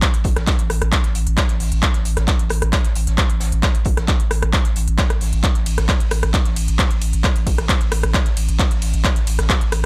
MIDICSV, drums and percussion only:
0, 0, Header, 1, 2, 480
1, 0, Start_track
1, 0, Tempo, 451128
1, 23, Time_signature, 4, 2, 24, 8
1, 10487, End_track
2, 0, Start_track
2, 0, Title_t, "Drums"
2, 23, Note_on_c, 9, 42, 93
2, 24, Note_off_c, 9, 42, 0
2, 24, Note_on_c, 9, 36, 122
2, 24, Note_on_c, 9, 39, 126
2, 24, Note_on_c, 9, 42, 88
2, 130, Note_off_c, 9, 36, 0
2, 131, Note_off_c, 9, 39, 0
2, 131, Note_off_c, 9, 42, 0
2, 148, Note_on_c, 9, 42, 57
2, 149, Note_off_c, 9, 42, 0
2, 149, Note_on_c, 9, 42, 46
2, 255, Note_off_c, 9, 42, 0
2, 257, Note_on_c, 9, 42, 76
2, 264, Note_on_c, 9, 36, 64
2, 264, Note_on_c, 9, 46, 108
2, 363, Note_off_c, 9, 42, 0
2, 370, Note_off_c, 9, 36, 0
2, 370, Note_off_c, 9, 46, 0
2, 388, Note_on_c, 9, 37, 82
2, 388, Note_on_c, 9, 42, 56
2, 390, Note_on_c, 9, 38, 54
2, 494, Note_off_c, 9, 37, 0
2, 494, Note_off_c, 9, 42, 0
2, 496, Note_off_c, 9, 38, 0
2, 504, Note_on_c, 9, 36, 127
2, 504, Note_on_c, 9, 39, 121
2, 504, Note_on_c, 9, 42, 83
2, 509, Note_off_c, 9, 42, 0
2, 509, Note_on_c, 9, 42, 98
2, 513, Note_on_c, 9, 38, 121
2, 610, Note_off_c, 9, 36, 0
2, 610, Note_off_c, 9, 39, 0
2, 616, Note_off_c, 9, 42, 0
2, 619, Note_off_c, 9, 38, 0
2, 628, Note_on_c, 9, 42, 58
2, 734, Note_off_c, 9, 42, 0
2, 744, Note_on_c, 9, 37, 91
2, 744, Note_on_c, 9, 46, 101
2, 757, Note_on_c, 9, 42, 67
2, 850, Note_off_c, 9, 37, 0
2, 850, Note_off_c, 9, 46, 0
2, 863, Note_off_c, 9, 42, 0
2, 868, Note_on_c, 9, 37, 93
2, 868, Note_on_c, 9, 42, 57
2, 974, Note_off_c, 9, 37, 0
2, 974, Note_off_c, 9, 42, 0
2, 984, Note_on_c, 9, 36, 127
2, 984, Note_on_c, 9, 39, 123
2, 984, Note_on_c, 9, 42, 82
2, 988, Note_off_c, 9, 42, 0
2, 988, Note_on_c, 9, 42, 91
2, 1090, Note_off_c, 9, 36, 0
2, 1090, Note_off_c, 9, 39, 0
2, 1095, Note_off_c, 9, 42, 0
2, 1106, Note_on_c, 9, 38, 46
2, 1108, Note_on_c, 9, 42, 58
2, 1212, Note_off_c, 9, 38, 0
2, 1214, Note_off_c, 9, 42, 0
2, 1224, Note_on_c, 9, 46, 110
2, 1225, Note_on_c, 9, 42, 72
2, 1330, Note_off_c, 9, 46, 0
2, 1331, Note_off_c, 9, 42, 0
2, 1348, Note_on_c, 9, 42, 58
2, 1454, Note_off_c, 9, 42, 0
2, 1459, Note_on_c, 9, 38, 121
2, 1464, Note_on_c, 9, 36, 122
2, 1464, Note_on_c, 9, 39, 125
2, 1464, Note_on_c, 9, 42, 84
2, 1470, Note_off_c, 9, 42, 0
2, 1470, Note_on_c, 9, 42, 90
2, 1565, Note_off_c, 9, 38, 0
2, 1570, Note_off_c, 9, 36, 0
2, 1570, Note_off_c, 9, 39, 0
2, 1576, Note_off_c, 9, 42, 0
2, 1584, Note_on_c, 9, 38, 56
2, 1587, Note_on_c, 9, 42, 55
2, 1690, Note_off_c, 9, 38, 0
2, 1694, Note_off_c, 9, 42, 0
2, 1698, Note_on_c, 9, 38, 37
2, 1704, Note_on_c, 9, 46, 98
2, 1705, Note_off_c, 9, 46, 0
2, 1705, Note_on_c, 9, 46, 84
2, 1804, Note_off_c, 9, 38, 0
2, 1811, Note_off_c, 9, 46, 0
2, 1827, Note_on_c, 9, 42, 57
2, 1934, Note_off_c, 9, 42, 0
2, 1943, Note_on_c, 9, 42, 95
2, 1944, Note_off_c, 9, 42, 0
2, 1944, Note_on_c, 9, 36, 127
2, 1944, Note_on_c, 9, 39, 124
2, 1944, Note_on_c, 9, 42, 85
2, 2050, Note_off_c, 9, 36, 0
2, 2050, Note_off_c, 9, 39, 0
2, 2050, Note_off_c, 9, 42, 0
2, 2066, Note_on_c, 9, 38, 44
2, 2067, Note_on_c, 9, 42, 54
2, 2172, Note_off_c, 9, 38, 0
2, 2174, Note_off_c, 9, 42, 0
2, 2184, Note_on_c, 9, 46, 108
2, 2185, Note_on_c, 9, 42, 67
2, 2290, Note_off_c, 9, 46, 0
2, 2292, Note_off_c, 9, 42, 0
2, 2304, Note_on_c, 9, 38, 56
2, 2307, Note_on_c, 9, 37, 83
2, 2307, Note_on_c, 9, 42, 55
2, 2410, Note_off_c, 9, 38, 0
2, 2414, Note_off_c, 9, 37, 0
2, 2414, Note_off_c, 9, 42, 0
2, 2417, Note_on_c, 9, 38, 113
2, 2423, Note_on_c, 9, 36, 127
2, 2424, Note_on_c, 9, 39, 116
2, 2424, Note_on_c, 9, 42, 88
2, 2524, Note_off_c, 9, 38, 0
2, 2530, Note_off_c, 9, 36, 0
2, 2530, Note_off_c, 9, 39, 0
2, 2531, Note_off_c, 9, 42, 0
2, 2547, Note_on_c, 9, 42, 56
2, 2654, Note_off_c, 9, 42, 0
2, 2655, Note_on_c, 9, 42, 70
2, 2664, Note_on_c, 9, 37, 94
2, 2664, Note_on_c, 9, 46, 101
2, 2761, Note_off_c, 9, 42, 0
2, 2770, Note_off_c, 9, 37, 0
2, 2770, Note_off_c, 9, 46, 0
2, 2787, Note_on_c, 9, 37, 92
2, 2787, Note_on_c, 9, 42, 56
2, 2894, Note_off_c, 9, 37, 0
2, 2894, Note_off_c, 9, 42, 0
2, 2904, Note_on_c, 9, 36, 127
2, 2904, Note_on_c, 9, 39, 116
2, 2904, Note_on_c, 9, 42, 81
2, 2906, Note_off_c, 9, 42, 0
2, 2906, Note_on_c, 9, 42, 93
2, 3010, Note_off_c, 9, 36, 0
2, 3010, Note_off_c, 9, 39, 0
2, 3012, Note_off_c, 9, 42, 0
2, 3026, Note_on_c, 9, 38, 48
2, 3028, Note_on_c, 9, 42, 56
2, 3133, Note_off_c, 9, 38, 0
2, 3134, Note_off_c, 9, 42, 0
2, 3144, Note_on_c, 9, 46, 110
2, 3147, Note_on_c, 9, 42, 82
2, 3250, Note_off_c, 9, 46, 0
2, 3254, Note_off_c, 9, 42, 0
2, 3268, Note_on_c, 9, 42, 57
2, 3270, Note_on_c, 9, 38, 41
2, 3374, Note_off_c, 9, 42, 0
2, 3376, Note_off_c, 9, 38, 0
2, 3384, Note_on_c, 9, 36, 126
2, 3384, Note_on_c, 9, 39, 118
2, 3384, Note_on_c, 9, 42, 80
2, 3389, Note_off_c, 9, 42, 0
2, 3389, Note_on_c, 9, 42, 58
2, 3490, Note_off_c, 9, 36, 0
2, 3491, Note_off_c, 9, 39, 0
2, 3495, Note_off_c, 9, 42, 0
2, 3508, Note_on_c, 9, 42, 54
2, 3614, Note_off_c, 9, 42, 0
2, 3620, Note_on_c, 9, 38, 97
2, 3625, Note_on_c, 9, 46, 101
2, 3627, Note_on_c, 9, 42, 73
2, 3726, Note_off_c, 9, 38, 0
2, 3731, Note_off_c, 9, 46, 0
2, 3733, Note_off_c, 9, 42, 0
2, 3748, Note_on_c, 9, 42, 57
2, 3854, Note_off_c, 9, 42, 0
2, 3863, Note_on_c, 9, 36, 127
2, 3864, Note_on_c, 9, 39, 120
2, 3864, Note_on_c, 9, 42, 83
2, 3866, Note_off_c, 9, 42, 0
2, 3866, Note_on_c, 9, 42, 81
2, 3868, Note_on_c, 9, 38, 96
2, 3970, Note_off_c, 9, 36, 0
2, 3971, Note_off_c, 9, 39, 0
2, 3972, Note_off_c, 9, 42, 0
2, 3975, Note_off_c, 9, 38, 0
2, 3982, Note_on_c, 9, 42, 47
2, 3988, Note_off_c, 9, 42, 0
2, 3988, Note_on_c, 9, 42, 53
2, 4094, Note_off_c, 9, 42, 0
2, 4094, Note_on_c, 9, 42, 64
2, 4104, Note_on_c, 9, 36, 67
2, 4104, Note_on_c, 9, 46, 108
2, 4200, Note_off_c, 9, 42, 0
2, 4210, Note_off_c, 9, 36, 0
2, 4210, Note_off_c, 9, 46, 0
2, 4227, Note_on_c, 9, 37, 86
2, 4227, Note_on_c, 9, 42, 52
2, 4229, Note_on_c, 9, 38, 51
2, 4334, Note_off_c, 9, 37, 0
2, 4334, Note_off_c, 9, 42, 0
2, 4335, Note_off_c, 9, 38, 0
2, 4344, Note_on_c, 9, 36, 127
2, 4344, Note_on_c, 9, 39, 114
2, 4344, Note_on_c, 9, 42, 79
2, 4347, Note_on_c, 9, 38, 118
2, 4348, Note_off_c, 9, 42, 0
2, 4348, Note_on_c, 9, 42, 90
2, 4450, Note_off_c, 9, 36, 0
2, 4450, Note_off_c, 9, 39, 0
2, 4453, Note_off_c, 9, 38, 0
2, 4454, Note_off_c, 9, 42, 0
2, 4468, Note_on_c, 9, 42, 54
2, 4574, Note_off_c, 9, 42, 0
2, 4584, Note_on_c, 9, 37, 99
2, 4584, Note_on_c, 9, 46, 101
2, 4586, Note_on_c, 9, 42, 69
2, 4690, Note_off_c, 9, 37, 0
2, 4690, Note_off_c, 9, 46, 0
2, 4692, Note_off_c, 9, 42, 0
2, 4708, Note_on_c, 9, 37, 96
2, 4708, Note_on_c, 9, 42, 53
2, 4814, Note_off_c, 9, 37, 0
2, 4814, Note_off_c, 9, 42, 0
2, 4824, Note_on_c, 9, 36, 124
2, 4824, Note_on_c, 9, 39, 113
2, 4824, Note_on_c, 9, 42, 81
2, 4833, Note_off_c, 9, 42, 0
2, 4833, Note_on_c, 9, 42, 84
2, 4930, Note_off_c, 9, 36, 0
2, 4930, Note_off_c, 9, 39, 0
2, 4939, Note_off_c, 9, 42, 0
2, 4948, Note_on_c, 9, 42, 54
2, 4951, Note_on_c, 9, 38, 45
2, 5055, Note_off_c, 9, 42, 0
2, 5057, Note_off_c, 9, 38, 0
2, 5064, Note_on_c, 9, 46, 112
2, 5070, Note_on_c, 9, 42, 73
2, 5171, Note_off_c, 9, 46, 0
2, 5176, Note_off_c, 9, 42, 0
2, 5188, Note_on_c, 9, 42, 53
2, 5295, Note_off_c, 9, 42, 0
2, 5299, Note_on_c, 9, 42, 85
2, 5303, Note_on_c, 9, 38, 117
2, 5304, Note_off_c, 9, 42, 0
2, 5304, Note_on_c, 9, 36, 122
2, 5304, Note_on_c, 9, 39, 112
2, 5304, Note_on_c, 9, 42, 80
2, 5410, Note_off_c, 9, 36, 0
2, 5410, Note_off_c, 9, 38, 0
2, 5410, Note_off_c, 9, 39, 0
2, 5410, Note_off_c, 9, 42, 0
2, 5422, Note_on_c, 9, 38, 55
2, 5428, Note_on_c, 9, 37, 85
2, 5428, Note_on_c, 9, 42, 53
2, 5528, Note_off_c, 9, 38, 0
2, 5534, Note_off_c, 9, 37, 0
2, 5534, Note_off_c, 9, 42, 0
2, 5540, Note_on_c, 9, 46, 80
2, 5545, Note_off_c, 9, 46, 0
2, 5545, Note_on_c, 9, 46, 96
2, 5548, Note_on_c, 9, 38, 40
2, 5651, Note_off_c, 9, 46, 0
2, 5655, Note_off_c, 9, 38, 0
2, 5668, Note_on_c, 9, 42, 52
2, 5774, Note_off_c, 9, 42, 0
2, 5782, Note_on_c, 9, 42, 87
2, 5784, Note_off_c, 9, 42, 0
2, 5784, Note_on_c, 9, 36, 120
2, 5784, Note_on_c, 9, 39, 118
2, 5784, Note_on_c, 9, 42, 79
2, 5890, Note_off_c, 9, 36, 0
2, 5891, Note_off_c, 9, 39, 0
2, 5891, Note_off_c, 9, 42, 0
2, 5908, Note_on_c, 9, 38, 41
2, 5908, Note_on_c, 9, 42, 51
2, 6015, Note_off_c, 9, 38, 0
2, 6015, Note_off_c, 9, 42, 0
2, 6024, Note_on_c, 9, 46, 106
2, 6024, Note_on_c, 9, 51, 81
2, 6025, Note_on_c, 9, 42, 65
2, 6131, Note_off_c, 9, 42, 0
2, 6131, Note_off_c, 9, 46, 0
2, 6131, Note_off_c, 9, 51, 0
2, 6147, Note_on_c, 9, 38, 57
2, 6148, Note_on_c, 9, 37, 92
2, 6148, Note_on_c, 9, 42, 52
2, 6254, Note_off_c, 9, 38, 0
2, 6255, Note_off_c, 9, 37, 0
2, 6255, Note_off_c, 9, 42, 0
2, 6262, Note_on_c, 9, 42, 92
2, 6264, Note_on_c, 9, 36, 124
2, 6265, Note_off_c, 9, 42, 0
2, 6265, Note_on_c, 9, 39, 116
2, 6265, Note_on_c, 9, 42, 76
2, 6267, Note_on_c, 9, 38, 109
2, 6370, Note_off_c, 9, 36, 0
2, 6371, Note_off_c, 9, 39, 0
2, 6371, Note_off_c, 9, 42, 0
2, 6374, Note_off_c, 9, 38, 0
2, 6388, Note_on_c, 9, 42, 54
2, 6495, Note_off_c, 9, 42, 0
2, 6501, Note_on_c, 9, 42, 70
2, 6504, Note_on_c, 9, 37, 100
2, 6504, Note_on_c, 9, 46, 95
2, 6504, Note_on_c, 9, 51, 83
2, 6607, Note_off_c, 9, 42, 0
2, 6611, Note_off_c, 9, 37, 0
2, 6611, Note_off_c, 9, 46, 0
2, 6611, Note_off_c, 9, 51, 0
2, 6628, Note_on_c, 9, 37, 99
2, 6628, Note_on_c, 9, 42, 52
2, 6734, Note_off_c, 9, 37, 0
2, 6734, Note_off_c, 9, 42, 0
2, 6744, Note_on_c, 9, 36, 118
2, 6744, Note_on_c, 9, 39, 117
2, 6744, Note_on_c, 9, 42, 77
2, 6747, Note_off_c, 9, 42, 0
2, 6747, Note_on_c, 9, 42, 87
2, 6850, Note_off_c, 9, 36, 0
2, 6851, Note_off_c, 9, 39, 0
2, 6853, Note_off_c, 9, 42, 0
2, 6864, Note_on_c, 9, 38, 46
2, 6868, Note_on_c, 9, 42, 52
2, 6971, Note_off_c, 9, 38, 0
2, 6975, Note_off_c, 9, 42, 0
2, 6984, Note_on_c, 9, 46, 108
2, 6984, Note_on_c, 9, 51, 78
2, 6988, Note_on_c, 9, 42, 65
2, 7091, Note_off_c, 9, 46, 0
2, 7091, Note_off_c, 9, 51, 0
2, 7095, Note_off_c, 9, 42, 0
2, 7108, Note_on_c, 9, 42, 52
2, 7215, Note_off_c, 9, 42, 0
2, 7216, Note_on_c, 9, 42, 91
2, 7223, Note_on_c, 9, 38, 113
2, 7224, Note_on_c, 9, 36, 118
2, 7225, Note_off_c, 9, 42, 0
2, 7225, Note_on_c, 9, 39, 115
2, 7225, Note_on_c, 9, 42, 77
2, 7330, Note_off_c, 9, 38, 0
2, 7331, Note_off_c, 9, 36, 0
2, 7331, Note_off_c, 9, 39, 0
2, 7331, Note_off_c, 9, 42, 0
2, 7349, Note_on_c, 9, 42, 50
2, 7455, Note_off_c, 9, 42, 0
2, 7465, Note_on_c, 9, 46, 95
2, 7465, Note_on_c, 9, 51, 83
2, 7467, Note_on_c, 9, 42, 61
2, 7571, Note_off_c, 9, 46, 0
2, 7571, Note_off_c, 9, 51, 0
2, 7573, Note_off_c, 9, 42, 0
2, 7588, Note_on_c, 9, 42, 52
2, 7695, Note_off_c, 9, 42, 0
2, 7700, Note_on_c, 9, 42, 95
2, 7704, Note_on_c, 9, 36, 118
2, 7705, Note_off_c, 9, 42, 0
2, 7705, Note_on_c, 9, 39, 120
2, 7705, Note_on_c, 9, 42, 78
2, 7811, Note_off_c, 9, 36, 0
2, 7811, Note_off_c, 9, 39, 0
2, 7811, Note_off_c, 9, 42, 0
2, 7828, Note_on_c, 9, 42, 52
2, 7833, Note_off_c, 9, 42, 0
2, 7833, Note_on_c, 9, 42, 42
2, 7940, Note_off_c, 9, 42, 0
2, 7944, Note_on_c, 9, 36, 61
2, 7945, Note_on_c, 9, 46, 100
2, 7945, Note_on_c, 9, 51, 82
2, 7952, Note_on_c, 9, 42, 74
2, 8051, Note_off_c, 9, 36, 0
2, 8051, Note_off_c, 9, 46, 0
2, 8051, Note_off_c, 9, 51, 0
2, 8059, Note_off_c, 9, 42, 0
2, 8067, Note_on_c, 9, 38, 49
2, 8069, Note_on_c, 9, 37, 90
2, 8069, Note_on_c, 9, 42, 51
2, 8173, Note_off_c, 9, 38, 0
2, 8175, Note_off_c, 9, 37, 0
2, 8175, Note_off_c, 9, 42, 0
2, 8184, Note_on_c, 9, 36, 119
2, 8184, Note_on_c, 9, 38, 109
2, 8185, Note_on_c, 9, 39, 120
2, 8185, Note_on_c, 9, 42, 76
2, 8193, Note_off_c, 9, 42, 0
2, 8193, Note_on_c, 9, 42, 88
2, 8290, Note_off_c, 9, 38, 0
2, 8291, Note_off_c, 9, 36, 0
2, 8291, Note_off_c, 9, 39, 0
2, 8300, Note_off_c, 9, 42, 0
2, 8309, Note_on_c, 9, 42, 51
2, 8415, Note_off_c, 9, 42, 0
2, 8424, Note_on_c, 9, 37, 100
2, 8424, Note_on_c, 9, 46, 95
2, 8424, Note_on_c, 9, 51, 86
2, 8427, Note_on_c, 9, 42, 77
2, 8531, Note_off_c, 9, 37, 0
2, 8531, Note_off_c, 9, 46, 0
2, 8531, Note_off_c, 9, 51, 0
2, 8534, Note_off_c, 9, 42, 0
2, 8548, Note_on_c, 9, 37, 102
2, 8548, Note_on_c, 9, 42, 52
2, 8654, Note_off_c, 9, 37, 0
2, 8654, Note_off_c, 9, 42, 0
2, 8664, Note_on_c, 9, 36, 117
2, 8664, Note_on_c, 9, 39, 119
2, 8664, Note_on_c, 9, 42, 78
2, 8770, Note_off_c, 9, 36, 0
2, 8771, Note_off_c, 9, 39, 0
2, 8771, Note_off_c, 9, 42, 0
2, 8788, Note_on_c, 9, 42, 53
2, 8791, Note_on_c, 9, 38, 47
2, 8895, Note_off_c, 9, 42, 0
2, 8898, Note_off_c, 9, 38, 0
2, 8904, Note_on_c, 9, 46, 100
2, 8904, Note_on_c, 9, 51, 81
2, 8905, Note_on_c, 9, 42, 65
2, 9011, Note_off_c, 9, 42, 0
2, 9011, Note_off_c, 9, 46, 0
2, 9011, Note_off_c, 9, 51, 0
2, 9028, Note_on_c, 9, 42, 54
2, 9135, Note_off_c, 9, 42, 0
2, 9136, Note_on_c, 9, 38, 114
2, 9143, Note_on_c, 9, 42, 84
2, 9144, Note_off_c, 9, 42, 0
2, 9144, Note_on_c, 9, 36, 113
2, 9144, Note_on_c, 9, 39, 120
2, 9144, Note_on_c, 9, 42, 79
2, 9243, Note_off_c, 9, 38, 0
2, 9250, Note_off_c, 9, 36, 0
2, 9251, Note_off_c, 9, 39, 0
2, 9251, Note_off_c, 9, 42, 0
2, 9259, Note_on_c, 9, 38, 54
2, 9268, Note_on_c, 9, 42, 50
2, 9365, Note_off_c, 9, 38, 0
2, 9374, Note_off_c, 9, 42, 0
2, 9381, Note_on_c, 9, 46, 77
2, 9382, Note_on_c, 9, 38, 40
2, 9385, Note_off_c, 9, 46, 0
2, 9385, Note_on_c, 9, 46, 92
2, 9385, Note_on_c, 9, 51, 85
2, 9489, Note_off_c, 9, 38, 0
2, 9491, Note_off_c, 9, 46, 0
2, 9491, Note_off_c, 9, 51, 0
2, 9508, Note_on_c, 9, 42, 51
2, 9615, Note_off_c, 9, 42, 0
2, 9624, Note_on_c, 9, 36, 115
2, 9624, Note_on_c, 9, 39, 127
2, 9624, Note_on_c, 9, 42, 82
2, 9625, Note_off_c, 9, 42, 0
2, 9625, Note_on_c, 9, 42, 90
2, 9730, Note_off_c, 9, 36, 0
2, 9731, Note_off_c, 9, 39, 0
2, 9732, Note_off_c, 9, 42, 0
2, 9748, Note_on_c, 9, 42, 54
2, 9751, Note_on_c, 9, 38, 42
2, 9854, Note_off_c, 9, 42, 0
2, 9857, Note_off_c, 9, 38, 0
2, 9864, Note_on_c, 9, 46, 101
2, 9864, Note_on_c, 9, 51, 83
2, 9869, Note_on_c, 9, 42, 71
2, 9971, Note_off_c, 9, 46, 0
2, 9971, Note_off_c, 9, 51, 0
2, 9975, Note_off_c, 9, 42, 0
2, 9988, Note_on_c, 9, 37, 88
2, 9988, Note_on_c, 9, 38, 64
2, 9988, Note_on_c, 9, 42, 52
2, 10094, Note_off_c, 9, 38, 0
2, 10095, Note_off_c, 9, 37, 0
2, 10095, Note_off_c, 9, 42, 0
2, 10100, Note_on_c, 9, 42, 87
2, 10104, Note_on_c, 9, 36, 117
2, 10105, Note_off_c, 9, 42, 0
2, 10105, Note_on_c, 9, 39, 123
2, 10105, Note_on_c, 9, 42, 81
2, 10108, Note_on_c, 9, 38, 122
2, 10210, Note_off_c, 9, 36, 0
2, 10211, Note_off_c, 9, 39, 0
2, 10211, Note_off_c, 9, 42, 0
2, 10214, Note_off_c, 9, 38, 0
2, 10228, Note_on_c, 9, 42, 54
2, 10335, Note_off_c, 9, 42, 0
2, 10344, Note_on_c, 9, 37, 97
2, 10344, Note_on_c, 9, 46, 94
2, 10344, Note_on_c, 9, 51, 85
2, 10345, Note_on_c, 9, 42, 66
2, 10451, Note_off_c, 9, 37, 0
2, 10451, Note_off_c, 9, 42, 0
2, 10451, Note_off_c, 9, 46, 0
2, 10451, Note_off_c, 9, 51, 0
2, 10487, End_track
0, 0, End_of_file